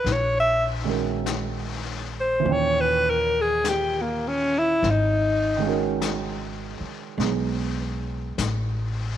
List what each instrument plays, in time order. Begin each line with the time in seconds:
Already playing: alto saxophone B4
0.04 upright bass A#1, brush sweep, snare
0.12 alto saxophone C#5
0.40 alto saxophone E5
0.84 upright piano D#3 G#3 C#4 F#4
0.89 upright piano A#4
1.26 brush sweep, snare, hi-hat pedal
2.21 alto saxophone C5
2.40 upright piano A#2 E3
2.45 upright bass D#2, upright piano D#3 C#4, brush sweep
2.51 alto saxophone C#5, upright piano G5
2.81 alto saxophone B4
3.10 alto saxophone A#4
3.41 alto saxophone G#4
3.64 brush sweep, snare, hi-hat pedal
3.69 alto saxophone G4
4.02 alto saxophone A#3
4.28 alto saxophone C#4
4.59 alto saxophone E4
4.83 upright bass G#1, brush sweep, snare
4.90 alto saxophone D#4
5.57 upright piano D#3 G#3
5.62 upright piano C#4 F#4
5.68 upright piano A#4
6.01 brush sweep, snare, hi-hat pedal
6.80 muted upright bass stroke
7.18 upright bass B1, upright piano G#3 B3 D#4 G#4, brush sweep, snare
8.38 upright bass A1, brush sweep, snare, hi-hat pedal